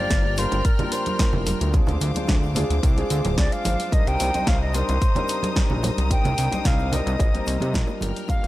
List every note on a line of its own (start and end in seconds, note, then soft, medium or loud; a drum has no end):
0.00 0.34 G3 medium
0.00 0.35 A#3 medium
0.00 0.35 D4 medium
0.00 0.35 F4 medium
0.00 1.72 A#4 medium
0.00 0.35 C5 loud
0.00 0.40 D5 loud
0.00 1.72 G5 medium
0.00 1.72 F6 medium
0.10 0.46 G1 loud
0.10 kick loud
0.10 snare loud
0.10 closed hi-hat medium
0.10 shaker medium
0.23 high bongo soft
0.37 0.57 G3 loud
0.37 0.57 A#3 medium
0.37 0.57 D4 medium
0.37 0.57 F4 medium
0.37 0.57 A#4 loud
0.37 0.67 C5 loud
0.37 open hi-hat loud
0.37 shaker medium
0.51 0.62 G1 medium
0.51 closed hi-hat medium
0.51 high bongo medium
0.51 shaker soft
0.65 0.94 A#4 loud
0.65 kick loud
0.65 closed hi-hat medium
0.65 shaker medium
0.79 1.16 G3 loud
0.79 1.16 A#3 medium
0.79 1.17 D4 medium
0.79 1.17 F4 medium
0.79 1.17 A#4 loud
0.79 closed hi-hat soft
0.79 low conga medium
0.92 1.47 C5 medium
0.92 open hi-hat loud
0.92 high bongo medium
0.92 shaker medium
1.06 closed hi-hat soft
1.06 high conga medium
1.06 shaker soft
1.19 1.71 G3 medium
1.19 1.71 A#3 medium
1.19 1.71 D4 medium
1.19 1.71 F4 medium
1.19 1.71 A#4 loud
1.19 kick loud
1.19 snare loud
1.19 closed hi-hat medium
1.19 high bongo medium
1.19 shaker medium
1.33 1.54 F1 medium
1.33 low conga medium
1.46 open hi-hat loud
1.46 high conga medium
1.46 shaker medium
1.60 1.81 D2 medium
1.60 closed hi-hat soft
1.60 high bongo medium
1.60 shaker soft
1.73 2.12 G#3 medium
1.73 2.12 C4 medium
1.73 2.13 D4 medium
1.73 2.13 F4 medium
1.73 2.13 G#4 medium
1.73 7.97 C5 medium
1.73 3.90 F5 medium
1.73 3.90 D6 medium
1.73 kick loud
1.73 closed hi-hat medium
1.73 shaker medium
1.87 1.98 D2 loud
1.87 closed hi-hat soft
1.87 high bongo medium
1.87 low conga medium
1.87 shaker soft
2.01 2.12 D2 loud
2.01 open hi-hat loud
2.01 shaker medium
2.14 2.26 D2 soft
2.14 2.53 G#3 medium
2.14 2.53 C4 medium
2.14 2.53 D4 medium
2.14 2.53 F4 medium
2.14 2.53 C5 medium
2.14 closed hi-hat soft
2.14 high conga medium
2.14 shaker soft
2.27 2.64 D2 medium
2.27 kick loud
2.27 snare loud
2.27 closed hi-hat medium
2.27 high bongo soft
2.27 shaker soft
2.43 shaker soft
2.55 2.75 G#3 loud
2.55 2.75 C4 medium
2.55 2.76 D4 medium
2.55 2.76 F4 medium
2.55 2.76 G#4 loud
2.55 open hi-hat loud
2.55 high bongo medium
2.55 low conga loud
2.55 shaker medium
2.70 2.80 D2 medium
2.70 closed hi-hat soft
2.70 shaker soft
2.83 3.04 C2 loud
2.83 kick loud
2.83 closed hi-hat medium
2.83 shaker medium
2.96 3.35 G#3 loud
2.96 3.35 C4 medium
2.96 3.35 D4 medium
2.96 3.35 F4 medium
2.96 3.35 G#4 loud
2.96 closed hi-hat soft
2.96 high bongo soft
3.10 3.21 D2 medium
3.10 open hi-hat loud
3.10 shaker medium
3.25 3.37 D1 medium
3.25 closed hi-hat soft
3.25 high bongo medium
3.25 high conga medium
3.25 shaker soft
3.38 3.48 C2 loud
3.38 3.89 G#3 medium
3.38 3.89 C4 medium
3.38 3.89 D4 medium
3.38 3.90 F4 medium
3.38 3.90 G#4 loud
3.38 3.54 D5 medium
3.38 kick loud
3.38 snare loud
3.38 closed hi-hat medium
3.38 shaker soft
3.52 3.94 F5 loud
3.52 closed hi-hat soft
3.52 shaker soft
3.65 3.76 G#1 loud
3.65 open hi-hat loud
3.65 high bongo soft
3.65 high conga medium
3.65 shaker medium
3.80 open hi-hat medium
3.80 shaker soft
3.92 4.04 C2 soft
3.92 4.31 G3 medium
3.92 4.31 C4 medium
3.92 4.31 D4 medium
3.92 4.31 D#4 medium
3.92 4.31 A#4 medium
3.92 4.09 D#5 loud
3.92 7.98 A#5 medium
3.92 7.98 D#6 medium
3.92 kick loud
3.92 closed hi-hat medium
3.92 shaker medium
4.07 4.17 C2 loud
4.07 4.50 G5 loud
4.07 closed hi-hat soft
4.07 shaker soft
4.20 4.31 C2 medium
4.20 open hi-hat loud
4.20 high bongo soft
4.20 shaker medium
4.34 4.45 C2 soft
4.34 4.71 G3 medium
4.34 4.71 C4 medium
4.34 4.71 D4 medium
4.34 4.72 D#4 medium
4.34 4.72 C5 loud
4.34 closed hi-hat medium
4.34 high conga medium
4.34 shaker soft
4.47 4.83 C2 loud
4.47 4.61 F5 loud
4.47 kick loud
4.47 snare loud
4.47 closed hi-hat medium
4.47 high bongo medium
4.47 shaker soft
4.62 4.76 D#5 medium
4.74 4.94 G3 loud
4.74 4.94 C4 medium
4.74 4.94 D4 medium
4.74 4.94 D#4 medium
4.74 4.94 A#4 loud
4.74 5.84 C5 loud
4.74 open hi-hat loud
4.74 shaker medium
4.88 4.98 C2 medium
4.88 closed hi-hat medium
4.88 high bongo soft
4.88 shaker soft
5.01 kick loud
5.01 closed hi-hat medium
5.01 shaker medium
5.15 5.53 G3 loud
5.15 5.53 C4 medium
5.15 5.53 D4 medium
5.15 5.53 D#4 medium
5.15 5.53 A#4 loud
5.15 closed hi-hat soft
5.15 high bongo medium
5.15 low conga medium
5.28 open hi-hat loud
5.28 shaker medium
5.43 closed hi-hat soft
5.43 high conga medium
5.43 shaker soft
5.56 6.08 G3 medium
5.56 6.08 C4 medium
5.56 6.08 D4 medium
5.56 6.08 D#4 medium
5.56 6.08 A#4 loud
5.56 kick loud
5.56 snare loud
5.56 closed hi-hat medium
5.56 high bongo medium
5.56 shaker medium
5.70 5.91 A#1 medium
5.70 low conga medium
5.83 open hi-hat loud
5.83 high bongo medium
5.83 high conga medium
5.83 shaker medium
5.97 6.18 C2 medium
5.97 closed hi-hat soft
5.97 shaker soft
6.10 6.49 G3 medium
6.10 6.49 C4 medium
6.10 6.49 D4 medium
6.10 6.49 D#4 medium
6.10 6.49 A#4 medium
6.10 6.68 G5 loud
6.10 kick loud
6.10 closed hi-hat medium
6.10 shaker medium
6.24 6.35 C2 loud
6.24 closed hi-hat soft
6.24 high bongo soft
6.24 low conga loud
6.24 shaker soft
6.38 6.49 C2 medium
6.38 open hi-hat loud
6.38 shaker loud
6.52 6.63 C2 soft
6.52 6.89 G3 medium
6.52 6.90 C4 medium
6.52 6.90 D4 medium
6.52 6.90 D#4 medium
6.52 6.90 C5 loud
6.52 closed hi-hat medium
6.52 high bongo medium
6.52 high conga medium
6.52 shaker soft
6.65 7.01 C2 medium
6.65 6.94 F5 loud
6.65 kick loud
6.65 snare loud
6.65 closed hi-hat medium
6.65 shaker medium
6.79 shaker soft
6.92 7.12 G3 loud
6.92 7.12 C4 medium
6.92 7.12 D4 medium
6.92 7.12 D#4 medium
6.92 7.12 A#4 loud
6.92 8.02 D#5 loud
6.92 open hi-hat loud
6.92 high bongo soft
6.92 low conga medium
6.92 shaker loud
7.07 7.16 C2 medium
7.07 closed hi-hat medium
7.07 shaker soft
7.19 7.40 A#1 loud
7.19 kick loud
7.19 closed hi-hat medium
7.19 high bongo medium
7.19 shaker medium
7.34 7.71 G3 loud
7.34 7.71 A#3 medium
7.34 7.71 C4 medium
7.34 7.72 D#4 medium
7.34 7.72 A#4 loud
7.34 closed hi-hat soft
7.46 7.58 C2 medium
7.46 open hi-hat loud
7.46 shaker medium
7.60 7.74 C3 medium
7.60 closed hi-hat medium
7.60 high bongo soft
7.60 high conga medium
7.60 shaker soft
7.74 7.85 A#1 loud
7.74 8.26 G3 medium
7.74 8.26 A#3 medium
7.74 8.26 D4 medium
7.74 8.26 F4 medium
7.74 8.26 A#4 loud
7.74 kick loud
7.74 snare loud
7.74 closed hi-hat medium
7.74 shaker medium
7.87 high bongo medium
7.87 shaker soft
8.01 8.12 G1 loud
8.01 8.47 A#4 medium
8.01 8.47 G5 medium
8.01 8.47 F6 medium
8.01 open hi-hat loud
8.01 high conga medium
8.01 shaker medium
8.16 open hi-hat medium
8.16 shaker soft
8.28 8.40 G1 soft
8.28 8.47 G3 medium
8.28 8.47 A#3 medium
8.28 8.47 D4 medium
8.28 8.47 F4 medium
8.28 8.47 A#4 medium
8.28 8.47 F5 loud
8.28 kick loud
8.28 closed hi-hat medium
8.28 high bongo medium
8.28 shaker medium
8.43 8.47 G1 loud
8.43 closed hi-hat soft
8.43 shaker soft